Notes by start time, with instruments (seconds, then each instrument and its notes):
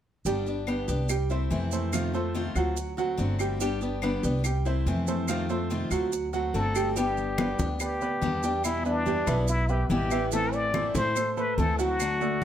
0.25 upright bass G1, steel-string acoustic guitar D3 G3 B3 D4 G4, grand piano G3 G4 G5, maracas
0.46 steel-string acoustic guitar B3 D4 G4, maracas
0.67 steel-string acoustic guitar D3 G3 B3 D4 G4, grand piano B3 B4 D5, claves, maracas
0.88 upright bass C2, steel-string acoustic guitar B3 D4 G4, maracas
1.09 grand piano G3 G4 G5, muted steel-string acoustic guitar stroke, claves, maracas
1.30 steel-string acoustic guitar A3 C4 E4, grand piano C4 C5 E5, maracas
1.50 upright bass F2, steel-string acoustic guitar C3 E3 A3 C4 E4, maracas
1.72 grand piano A3 A4 C5, maracas
1.93 steel-string acoustic guitar C3 D#3 A3 C4 F4, grand piano F3 F4 F5, claves, maracas
2.13 grand piano A3 A4 C5, steel-string acoustic guitar A3 C4 F4, maracas
2.34 steel-string acoustic guitar C3 D#3 A3 C4 F4, maracas
2.55 upright bass D2, grand piano F#3 F#4 F#5, steel-string acoustic guitar A3 C4 F4, claves, maracas
2.77 muted steel-string acoustic guitar stroke, maracas
2.97 grand piano F#3 F#4 F#5, steel-string acoustic guitar A3 C4 F#4, maracas
3.18 upright bass G1, steel-string acoustic guitar D3 A3 C4 F#4, maracas
3.39 grand piano G3 G4 G5, claves, maracas
3.60 steel-string acoustic guitar D3 G3 B3 D4 G4, grand piano G3 G4 G5, maracas
3.81 steel-string acoustic guitar B3 D4 G4, maracas
4.02 steel-string acoustic guitar D3 G3 B3 D4 G4, grand piano B3 B4 D5, claves, maracas
4.23 upright bass C2, steel-string acoustic guitar B3 D4 G4, maracas
4.44 grand piano G3 G4 G5, muted steel-string acoustic guitar stroke, claves, maracas
4.65 steel-string acoustic guitar A3 C4 E4, grand piano C4 C5 E5, maracas
4.86 upright bass F2, steel-string acoustic guitar C3 E3 A3 C4 E4, maracas
5.07 grand piano A3 A4 C5, maracas
5.28 steel-string acoustic guitar C3 D#3 A3 C4 F4, grand piano F3 F4 F5, claves, maracas
5.49 grand piano A3 A4 C5, steel-string acoustic guitar A3 C4 F4, maracas
5.70 steel-string acoustic guitar C3 D#3 A3 C4 F4, maracas
5.91 upright bass D2, grand piano F#3 F#4 F#5, steel-string acoustic guitar A3 C4 F4, claves, maracas
6.12 muted steel-string acoustic guitar stroke, maracas
6.33 grand piano F#3 F#4 F#5, steel-string acoustic guitar A3 C4 F#4, maracas
6.54 upright bass G1, steel-string acoustic guitar D3 A3 C4 F#4, muted trumpet A4, maracas
6.75 grand piano G3 G4 G5, claves, maracas
6.96 steel-string acoustic guitar D3 G3 B3 D4 G4, grand piano G3 G4 G5, muted trumpet G4, high conga, maracas
7.17 high conga, maracas
7.38 steel-string acoustic guitar G3 B3 D4 G4, grand piano B3 B4 D5, high conga, claves, maracas
7.59 upright bass D2, steel-string acoustic guitar G3 B3 D4 G4, high conga, maracas
7.80 grand piano B3 B4 D5, muted trumpet G4, muted steel-string acoustic guitar stroke, high conga, claves, maracas
8.01 grand piano B3 B4 D5, high conga, maracas
8.21 upright bass E2, steel-string acoustic guitar D3 G3 B3 D4 G4, high conga, maracas
8.43 grand piano G3 G4 G5, steel-string acoustic guitar B3 D4 G4, maracas
8.64 steel-string acoustic guitar B2 E3 G3 B3 E4, muted trumpet E4, high conga, claves, maracas
8.85 grand piano B3 B4 E5, muted trumpet D4, high conga, maracas
9.06 steel-string acoustic guitar E3 G3 B3 E4, grand piano G3 G4 G5, high conga, maracas
9.27 upright bass B1, steel-string acoustic guitar E3 G3 B3 E4, grand piano B3 B4 E5, high conga, claves, maracas
9.48 muted trumpet E4, muted steel-string acoustic guitar stroke, high conga, maracas
9.69 grand piano B3 B4 E5, muted trumpet G4, high conga, maracas
9.90 upright bass A1, steel-string acoustic guitar B2 E3 G3 B3 E4, muted trumpet G4, high conga, maracas
10.11 grand piano E3 E4 E5, steel-string acoustic guitar G3 B3 E4, high conga, claves, maracas
10.32 steel-string acoustic guitar E3 A3 C4 E4, grand piano E3 E4 E5, muted trumpet A4, high conga, maracas
10.53 muted trumpet D5, high conga, maracas
10.74 steel-string acoustic guitar E3 A3 C4 E4, grand piano A3 A4 C5, high conga, claves, maracas
10.95 upright bass A2, steel-string acoustic guitar A3 C4 E4, muted trumpet C5, high conga, maracas
11.16 grand piano A3 A4 C5, muted steel-string acoustic guitar stroke, high conga, claves, maracas
11.37 grand piano A3 A4 C5, muted trumpet B4, high conga, maracas
11.58 upright bass D2, steel-string acoustic guitar E3 A3 C4 E4, muted trumpet A4, high conga, maracas
11.79 grand piano F#3 F#4 F#5, steel-string acoustic guitar A3 C4 E4, muted trumpet F#4, maracas
12.00 steel-string acoustic guitar D3 A3 D4 F#4, high conga, claves, maracas
12.21 grand piano A3 A4 D5, high conga, maracas